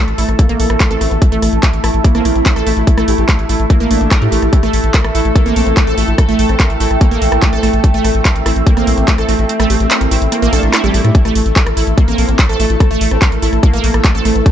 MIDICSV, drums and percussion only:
0, 0, Header, 1, 2, 480
1, 0, Start_track
1, 0, Tempo, 413793
1, 1412, Time_signature, 4, 2, 24, 8
1, 16841, End_track
2, 0, Start_track
2, 0, Title_t, "Drums"
2, 91, Note_on_c, 9, 42, 42
2, 207, Note_off_c, 9, 42, 0
2, 211, Note_on_c, 9, 46, 113
2, 327, Note_off_c, 9, 46, 0
2, 332, Note_on_c, 9, 37, 38
2, 332, Note_on_c, 9, 42, 39
2, 448, Note_off_c, 9, 37, 0
2, 448, Note_off_c, 9, 42, 0
2, 451, Note_on_c, 9, 42, 97
2, 452, Note_on_c, 9, 36, 127
2, 567, Note_off_c, 9, 42, 0
2, 568, Note_off_c, 9, 36, 0
2, 572, Note_on_c, 9, 42, 41
2, 688, Note_off_c, 9, 42, 0
2, 692, Note_on_c, 9, 46, 110
2, 808, Note_off_c, 9, 46, 0
2, 812, Note_on_c, 9, 37, 78
2, 812, Note_on_c, 9, 42, 41
2, 928, Note_off_c, 9, 37, 0
2, 928, Note_off_c, 9, 42, 0
2, 932, Note_on_c, 9, 36, 122
2, 932, Note_on_c, 9, 39, 127
2, 932, Note_on_c, 9, 42, 99
2, 1048, Note_off_c, 9, 36, 0
2, 1048, Note_off_c, 9, 39, 0
2, 1048, Note_off_c, 9, 42, 0
2, 1052, Note_on_c, 9, 42, 40
2, 1168, Note_off_c, 9, 42, 0
2, 1172, Note_on_c, 9, 37, 39
2, 1172, Note_on_c, 9, 46, 110
2, 1288, Note_off_c, 9, 37, 0
2, 1288, Note_off_c, 9, 46, 0
2, 1292, Note_on_c, 9, 42, 41
2, 1408, Note_off_c, 9, 42, 0
2, 1412, Note_on_c, 9, 36, 123
2, 1412, Note_on_c, 9, 42, 90
2, 1528, Note_off_c, 9, 36, 0
2, 1528, Note_off_c, 9, 42, 0
2, 1532, Note_on_c, 9, 42, 40
2, 1648, Note_off_c, 9, 42, 0
2, 1652, Note_on_c, 9, 37, 40
2, 1652, Note_on_c, 9, 46, 121
2, 1768, Note_off_c, 9, 37, 0
2, 1768, Note_off_c, 9, 46, 0
2, 1772, Note_on_c, 9, 42, 40
2, 1888, Note_off_c, 9, 42, 0
2, 1892, Note_on_c, 9, 36, 119
2, 1892, Note_on_c, 9, 39, 121
2, 1892, Note_on_c, 9, 42, 95
2, 2008, Note_off_c, 9, 36, 0
2, 2008, Note_off_c, 9, 39, 0
2, 2008, Note_off_c, 9, 42, 0
2, 2012, Note_on_c, 9, 42, 38
2, 2128, Note_off_c, 9, 42, 0
2, 2132, Note_on_c, 9, 37, 79
2, 2132, Note_on_c, 9, 46, 112
2, 2248, Note_off_c, 9, 37, 0
2, 2248, Note_off_c, 9, 46, 0
2, 2252, Note_on_c, 9, 42, 37
2, 2368, Note_off_c, 9, 42, 0
2, 2372, Note_on_c, 9, 36, 127
2, 2372, Note_on_c, 9, 42, 91
2, 2488, Note_off_c, 9, 36, 0
2, 2488, Note_off_c, 9, 42, 0
2, 2492, Note_on_c, 9, 37, 39
2, 2492, Note_on_c, 9, 42, 40
2, 2608, Note_off_c, 9, 37, 0
2, 2608, Note_off_c, 9, 42, 0
2, 2612, Note_on_c, 9, 46, 112
2, 2728, Note_off_c, 9, 46, 0
2, 2732, Note_on_c, 9, 42, 38
2, 2848, Note_off_c, 9, 42, 0
2, 2852, Note_on_c, 9, 36, 124
2, 2852, Note_on_c, 9, 39, 127
2, 2852, Note_on_c, 9, 42, 93
2, 2968, Note_off_c, 9, 36, 0
2, 2968, Note_off_c, 9, 39, 0
2, 2968, Note_off_c, 9, 42, 0
2, 2972, Note_on_c, 9, 37, 39
2, 2972, Note_on_c, 9, 42, 38
2, 3088, Note_off_c, 9, 37, 0
2, 3088, Note_off_c, 9, 42, 0
2, 3092, Note_on_c, 9, 46, 115
2, 3208, Note_off_c, 9, 46, 0
2, 3212, Note_on_c, 9, 42, 39
2, 3328, Note_off_c, 9, 42, 0
2, 3332, Note_on_c, 9, 36, 121
2, 3332, Note_on_c, 9, 42, 85
2, 3448, Note_off_c, 9, 36, 0
2, 3448, Note_off_c, 9, 42, 0
2, 3452, Note_on_c, 9, 37, 84
2, 3452, Note_on_c, 9, 42, 39
2, 3568, Note_off_c, 9, 37, 0
2, 3568, Note_off_c, 9, 42, 0
2, 3572, Note_on_c, 9, 46, 116
2, 3688, Note_off_c, 9, 46, 0
2, 3692, Note_on_c, 9, 42, 38
2, 3808, Note_off_c, 9, 42, 0
2, 3812, Note_on_c, 9, 36, 124
2, 3812, Note_on_c, 9, 37, 41
2, 3812, Note_on_c, 9, 39, 116
2, 3812, Note_on_c, 9, 42, 90
2, 3928, Note_off_c, 9, 36, 0
2, 3928, Note_off_c, 9, 37, 0
2, 3928, Note_off_c, 9, 39, 0
2, 3928, Note_off_c, 9, 42, 0
2, 3932, Note_on_c, 9, 42, 39
2, 4048, Note_off_c, 9, 42, 0
2, 4052, Note_on_c, 9, 46, 109
2, 4168, Note_off_c, 9, 46, 0
2, 4172, Note_on_c, 9, 42, 36
2, 4288, Note_off_c, 9, 42, 0
2, 4292, Note_on_c, 9, 36, 127
2, 4292, Note_on_c, 9, 37, 41
2, 4292, Note_on_c, 9, 42, 87
2, 4408, Note_off_c, 9, 36, 0
2, 4408, Note_off_c, 9, 37, 0
2, 4408, Note_off_c, 9, 42, 0
2, 4412, Note_on_c, 9, 42, 38
2, 4528, Note_off_c, 9, 42, 0
2, 4532, Note_on_c, 9, 46, 109
2, 4648, Note_off_c, 9, 46, 0
2, 4652, Note_on_c, 9, 42, 37
2, 4768, Note_off_c, 9, 42, 0
2, 4772, Note_on_c, 9, 36, 125
2, 4772, Note_on_c, 9, 37, 83
2, 4772, Note_on_c, 9, 39, 119
2, 4772, Note_on_c, 9, 42, 91
2, 4888, Note_off_c, 9, 36, 0
2, 4888, Note_off_c, 9, 37, 0
2, 4888, Note_off_c, 9, 39, 0
2, 4888, Note_off_c, 9, 42, 0
2, 4892, Note_on_c, 9, 42, 36
2, 5008, Note_off_c, 9, 42, 0
2, 5012, Note_on_c, 9, 46, 109
2, 5128, Note_off_c, 9, 46, 0
2, 5132, Note_on_c, 9, 37, 42
2, 5132, Note_on_c, 9, 42, 37
2, 5248, Note_off_c, 9, 37, 0
2, 5248, Note_off_c, 9, 42, 0
2, 5252, Note_on_c, 9, 36, 118
2, 5252, Note_on_c, 9, 42, 87
2, 5368, Note_off_c, 9, 36, 0
2, 5368, Note_off_c, 9, 42, 0
2, 5372, Note_on_c, 9, 37, 42
2, 5372, Note_on_c, 9, 42, 38
2, 5488, Note_off_c, 9, 37, 0
2, 5488, Note_off_c, 9, 42, 0
2, 5492, Note_on_c, 9, 46, 110
2, 5608, Note_off_c, 9, 46, 0
2, 5612, Note_on_c, 9, 42, 39
2, 5728, Note_off_c, 9, 42, 0
2, 5732, Note_on_c, 9, 36, 117
2, 5732, Note_on_c, 9, 39, 118
2, 5732, Note_on_c, 9, 42, 91
2, 5848, Note_off_c, 9, 36, 0
2, 5848, Note_off_c, 9, 39, 0
2, 5848, Note_off_c, 9, 42, 0
2, 5852, Note_on_c, 9, 37, 85
2, 5852, Note_on_c, 9, 42, 39
2, 5968, Note_off_c, 9, 37, 0
2, 5968, Note_off_c, 9, 42, 0
2, 5972, Note_on_c, 9, 46, 109
2, 6088, Note_off_c, 9, 46, 0
2, 6092, Note_on_c, 9, 42, 37
2, 6208, Note_off_c, 9, 42, 0
2, 6212, Note_on_c, 9, 36, 123
2, 6212, Note_on_c, 9, 37, 41
2, 6212, Note_on_c, 9, 42, 91
2, 6328, Note_off_c, 9, 36, 0
2, 6328, Note_off_c, 9, 37, 0
2, 6328, Note_off_c, 9, 42, 0
2, 6332, Note_on_c, 9, 42, 37
2, 6448, Note_off_c, 9, 42, 0
2, 6452, Note_on_c, 9, 46, 106
2, 6568, Note_off_c, 9, 46, 0
2, 6572, Note_on_c, 9, 42, 38
2, 6688, Note_off_c, 9, 42, 0
2, 6692, Note_on_c, 9, 36, 119
2, 6693, Note_on_c, 9, 37, 43
2, 6693, Note_on_c, 9, 39, 118
2, 6693, Note_on_c, 9, 42, 93
2, 6808, Note_off_c, 9, 36, 0
2, 6809, Note_off_c, 9, 37, 0
2, 6809, Note_off_c, 9, 39, 0
2, 6809, Note_off_c, 9, 42, 0
2, 6812, Note_on_c, 9, 42, 38
2, 6928, Note_off_c, 9, 42, 0
2, 6932, Note_on_c, 9, 46, 113
2, 7048, Note_off_c, 9, 46, 0
2, 7052, Note_on_c, 9, 42, 40
2, 7168, Note_off_c, 9, 42, 0
2, 7172, Note_on_c, 9, 36, 110
2, 7172, Note_on_c, 9, 37, 81
2, 7172, Note_on_c, 9, 42, 90
2, 7288, Note_off_c, 9, 36, 0
2, 7288, Note_off_c, 9, 37, 0
2, 7288, Note_off_c, 9, 42, 0
2, 7292, Note_on_c, 9, 42, 40
2, 7408, Note_off_c, 9, 42, 0
2, 7412, Note_on_c, 9, 46, 108
2, 7528, Note_off_c, 9, 46, 0
2, 7532, Note_on_c, 9, 37, 42
2, 7532, Note_on_c, 9, 42, 38
2, 7648, Note_off_c, 9, 37, 0
2, 7648, Note_off_c, 9, 42, 0
2, 7652, Note_on_c, 9, 36, 113
2, 7652, Note_on_c, 9, 39, 117
2, 7652, Note_on_c, 9, 42, 95
2, 7768, Note_off_c, 9, 36, 0
2, 7768, Note_off_c, 9, 39, 0
2, 7768, Note_off_c, 9, 42, 0
2, 7772, Note_on_c, 9, 42, 40
2, 7888, Note_off_c, 9, 42, 0
2, 7892, Note_on_c, 9, 46, 106
2, 8008, Note_off_c, 9, 46, 0
2, 8012, Note_on_c, 9, 37, 42
2, 8012, Note_on_c, 9, 42, 39
2, 8128, Note_off_c, 9, 37, 0
2, 8128, Note_off_c, 9, 42, 0
2, 8132, Note_on_c, 9, 36, 124
2, 8132, Note_on_c, 9, 42, 93
2, 8248, Note_off_c, 9, 36, 0
2, 8248, Note_off_c, 9, 42, 0
2, 8252, Note_on_c, 9, 42, 40
2, 8368, Note_off_c, 9, 42, 0
2, 8372, Note_on_c, 9, 46, 101
2, 8488, Note_off_c, 9, 46, 0
2, 8492, Note_on_c, 9, 37, 84
2, 8492, Note_on_c, 9, 42, 40
2, 8608, Note_off_c, 9, 37, 0
2, 8608, Note_off_c, 9, 42, 0
2, 8612, Note_on_c, 9, 36, 117
2, 8612, Note_on_c, 9, 39, 117
2, 8612, Note_on_c, 9, 42, 93
2, 8728, Note_off_c, 9, 36, 0
2, 8728, Note_off_c, 9, 39, 0
2, 8728, Note_off_c, 9, 42, 0
2, 8732, Note_on_c, 9, 42, 38
2, 8848, Note_off_c, 9, 42, 0
2, 8852, Note_on_c, 9, 37, 43
2, 8852, Note_on_c, 9, 46, 107
2, 8968, Note_off_c, 9, 37, 0
2, 8968, Note_off_c, 9, 46, 0
2, 8972, Note_on_c, 9, 42, 39
2, 9088, Note_off_c, 9, 42, 0
2, 9092, Note_on_c, 9, 36, 109
2, 9092, Note_on_c, 9, 42, 94
2, 9208, Note_off_c, 9, 36, 0
2, 9208, Note_off_c, 9, 42, 0
2, 9212, Note_on_c, 9, 42, 42
2, 9328, Note_off_c, 9, 42, 0
2, 9332, Note_on_c, 9, 37, 42
2, 9332, Note_on_c, 9, 46, 107
2, 9448, Note_off_c, 9, 37, 0
2, 9448, Note_off_c, 9, 46, 0
2, 9452, Note_on_c, 9, 42, 40
2, 9568, Note_off_c, 9, 42, 0
2, 9572, Note_on_c, 9, 36, 108
2, 9573, Note_on_c, 9, 39, 122
2, 9573, Note_on_c, 9, 42, 100
2, 9688, Note_off_c, 9, 36, 0
2, 9689, Note_off_c, 9, 39, 0
2, 9689, Note_off_c, 9, 42, 0
2, 9692, Note_on_c, 9, 42, 43
2, 9808, Note_off_c, 9, 42, 0
2, 9812, Note_on_c, 9, 37, 84
2, 9812, Note_on_c, 9, 46, 102
2, 9928, Note_off_c, 9, 37, 0
2, 9928, Note_off_c, 9, 46, 0
2, 9933, Note_on_c, 9, 42, 40
2, 10049, Note_off_c, 9, 42, 0
2, 10052, Note_on_c, 9, 36, 117
2, 10053, Note_on_c, 9, 42, 95
2, 10168, Note_off_c, 9, 36, 0
2, 10169, Note_off_c, 9, 42, 0
2, 10172, Note_on_c, 9, 37, 42
2, 10172, Note_on_c, 9, 42, 41
2, 10288, Note_off_c, 9, 37, 0
2, 10288, Note_off_c, 9, 42, 0
2, 10292, Note_on_c, 9, 46, 101
2, 10408, Note_off_c, 9, 46, 0
2, 10412, Note_on_c, 9, 42, 41
2, 10528, Note_off_c, 9, 42, 0
2, 10532, Note_on_c, 9, 36, 112
2, 10532, Note_on_c, 9, 39, 121
2, 10532, Note_on_c, 9, 42, 102
2, 10648, Note_off_c, 9, 36, 0
2, 10648, Note_off_c, 9, 39, 0
2, 10648, Note_off_c, 9, 42, 0
2, 10652, Note_on_c, 9, 37, 40
2, 10652, Note_on_c, 9, 42, 41
2, 10768, Note_off_c, 9, 37, 0
2, 10768, Note_off_c, 9, 42, 0
2, 10772, Note_on_c, 9, 46, 106
2, 10888, Note_off_c, 9, 46, 0
2, 10892, Note_on_c, 9, 42, 42
2, 11008, Note_off_c, 9, 42, 0
2, 11012, Note_on_c, 9, 42, 99
2, 11128, Note_off_c, 9, 42, 0
2, 11132, Note_on_c, 9, 37, 81
2, 11132, Note_on_c, 9, 42, 44
2, 11248, Note_off_c, 9, 37, 0
2, 11248, Note_off_c, 9, 42, 0
2, 11252, Note_on_c, 9, 46, 106
2, 11368, Note_off_c, 9, 46, 0
2, 11372, Note_on_c, 9, 42, 42
2, 11488, Note_off_c, 9, 42, 0
2, 11492, Note_on_c, 9, 37, 39
2, 11492, Note_on_c, 9, 39, 127
2, 11492, Note_on_c, 9, 42, 101
2, 11608, Note_off_c, 9, 37, 0
2, 11608, Note_off_c, 9, 39, 0
2, 11608, Note_off_c, 9, 42, 0
2, 11612, Note_on_c, 9, 42, 42
2, 11728, Note_off_c, 9, 42, 0
2, 11732, Note_on_c, 9, 46, 103
2, 11848, Note_off_c, 9, 46, 0
2, 11853, Note_on_c, 9, 42, 42
2, 11969, Note_off_c, 9, 42, 0
2, 11972, Note_on_c, 9, 37, 39
2, 11972, Note_on_c, 9, 42, 97
2, 12088, Note_off_c, 9, 37, 0
2, 12088, Note_off_c, 9, 42, 0
2, 12092, Note_on_c, 9, 42, 43
2, 12208, Note_off_c, 9, 42, 0
2, 12212, Note_on_c, 9, 46, 102
2, 12328, Note_off_c, 9, 46, 0
2, 12332, Note_on_c, 9, 42, 42
2, 12448, Note_off_c, 9, 42, 0
2, 12452, Note_on_c, 9, 37, 82
2, 12452, Note_on_c, 9, 39, 125
2, 12452, Note_on_c, 9, 42, 102
2, 12568, Note_off_c, 9, 37, 0
2, 12568, Note_off_c, 9, 39, 0
2, 12568, Note_off_c, 9, 42, 0
2, 12572, Note_on_c, 9, 42, 41
2, 12688, Note_off_c, 9, 42, 0
2, 12692, Note_on_c, 9, 46, 105
2, 12808, Note_off_c, 9, 46, 0
2, 12812, Note_on_c, 9, 37, 41
2, 12812, Note_on_c, 9, 42, 43
2, 12928, Note_off_c, 9, 37, 0
2, 12928, Note_off_c, 9, 42, 0
2, 12932, Note_on_c, 9, 36, 117
2, 12932, Note_on_c, 9, 42, 68
2, 13048, Note_off_c, 9, 36, 0
2, 13048, Note_off_c, 9, 42, 0
2, 13052, Note_on_c, 9, 37, 40
2, 13052, Note_on_c, 9, 42, 42
2, 13168, Note_off_c, 9, 37, 0
2, 13168, Note_off_c, 9, 42, 0
2, 13171, Note_on_c, 9, 46, 111
2, 13287, Note_off_c, 9, 46, 0
2, 13292, Note_on_c, 9, 42, 41
2, 13408, Note_off_c, 9, 42, 0
2, 13411, Note_on_c, 9, 39, 127
2, 13411, Note_on_c, 9, 42, 72
2, 13412, Note_on_c, 9, 36, 112
2, 13527, Note_off_c, 9, 39, 0
2, 13527, Note_off_c, 9, 42, 0
2, 13528, Note_off_c, 9, 36, 0
2, 13532, Note_on_c, 9, 37, 79
2, 13532, Note_on_c, 9, 42, 42
2, 13648, Note_off_c, 9, 37, 0
2, 13648, Note_off_c, 9, 42, 0
2, 13652, Note_on_c, 9, 46, 107
2, 13768, Note_off_c, 9, 46, 0
2, 13772, Note_on_c, 9, 42, 40
2, 13888, Note_off_c, 9, 42, 0
2, 13892, Note_on_c, 9, 36, 127
2, 13892, Note_on_c, 9, 37, 38
2, 13892, Note_on_c, 9, 42, 69
2, 14008, Note_off_c, 9, 36, 0
2, 14008, Note_off_c, 9, 37, 0
2, 14008, Note_off_c, 9, 42, 0
2, 14012, Note_on_c, 9, 42, 42
2, 14128, Note_off_c, 9, 42, 0
2, 14132, Note_on_c, 9, 46, 104
2, 14248, Note_off_c, 9, 46, 0
2, 14252, Note_on_c, 9, 42, 43
2, 14368, Note_off_c, 9, 42, 0
2, 14372, Note_on_c, 9, 36, 122
2, 14372, Note_on_c, 9, 37, 41
2, 14372, Note_on_c, 9, 39, 127
2, 14372, Note_on_c, 9, 42, 71
2, 14488, Note_off_c, 9, 36, 0
2, 14488, Note_off_c, 9, 37, 0
2, 14488, Note_off_c, 9, 39, 0
2, 14488, Note_off_c, 9, 42, 0
2, 14492, Note_on_c, 9, 42, 43
2, 14608, Note_off_c, 9, 42, 0
2, 14612, Note_on_c, 9, 46, 111
2, 14728, Note_off_c, 9, 46, 0
2, 14732, Note_on_c, 9, 42, 43
2, 14848, Note_off_c, 9, 42, 0
2, 14852, Note_on_c, 9, 36, 119
2, 14852, Note_on_c, 9, 37, 77
2, 14852, Note_on_c, 9, 42, 68
2, 14968, Note_off_c, 9, 36, 0
2, 14968, Note_off_c, 9, 37, 0
2, 14968, Note_off_c, 9, 42, 0
2, 14972, Note_on_c, 9, 42, 42
2, 15088, Note_off_c, 9, 42, 0
2, 15092, Note_on_c, 9, 46, 122
2, 15208, Note_off_c, 9, 46, 0
2, 15212, Note_on_c, 9, 37, 40
2, 15212, Note_on_c, 9, 42, 40
2, 15328, Note_off_c, 9, 37, 0
2, 15328, Note_off_c, 9, 42, 0
2, 15332, Note_on_c, 9, 36, 122
2, 15332, Note_on_c, 9, 39, 127
2, 15332, Note_on_c, 9, 42, 69
2, 15448, Note_off_c, 9, 36, 0
2, 15448, Note_off_c, 9, 39, 0
2, 15448, Note_off_c, 9, 42, 0
2, 15452, Note_on_c, 9, 42, 42
2, 15568, Note_off_c, 9, 42, 0
2, 15572, Note_on_c, 9, 46, 112
2, 15688, Note_off_c, 9, 46, 0
2, 15692, Note_on_c, 9, 37, 39
2, 15692, Note_on_c, 9, 42, 39
2, 15808, Note_off_c, 9, 37, 0
2, 15808, Note_off_c, 9, 42, 0
2, 15812, Note_on_c, 9, 36, 127
2, 15812, Note_on_c, 9, 42, 67
2, 15928, Note_off_c, 9, 36, 0
2, 15928, Note_off_c, 9, 42, 0
2, 15932, Note_on_c, 9, 42, 41
2, 16048, Note_off_c, 9, 42, 0
2, 16052, Note_on_c, 9, 46, 109
2, 16168, Note_off_c, 9, 46, 0
2, 16173, Note_on_c, 9, 37, 79
2, 16173, Note_on_c, 9, 42, 40
2, 16289, Note_off_c, 9, 37, 0
2, 16289, Note_off_c, 9, 42, 0
2, 16292, Note_on_c, 9, 36, 123
2, 16292, Note_on_c, 9, 39, 127
2, 16292, Note_on_c, 9, 42, 69
2, 16408, Note_off_c, 9, 36, 0
2, 16408, Note_off_c, 9, 39, 0
2, 16408, Note_off_c, 9, 42, 0
2, 16412, Note_on_c, 9, 42, 40
2, 16528, Note_off_c, 9, 42, 0
2, 16532, Note_on_c, 9, 37, 40
2, 16532, Note_on_c, 9, 46, 112
2, 16648, Note_off_c, 9, 37, 0
2, 16648, Note_off_c, 9, 46, 0
2, 16653, Note_on_c, 9, 42, 42
2, 16769, Note_off_c, 9, 42, 0
2, 16772, Note_on_c, 9, 36, 125
2, 16772, Note_on_c, 9, 42, 63
2, 16841, Note_off_c, 9, 36, 0
2, 16841, Note_off_c, 9, 42, 0
2, 16841, End_track
0, 0, End_of_file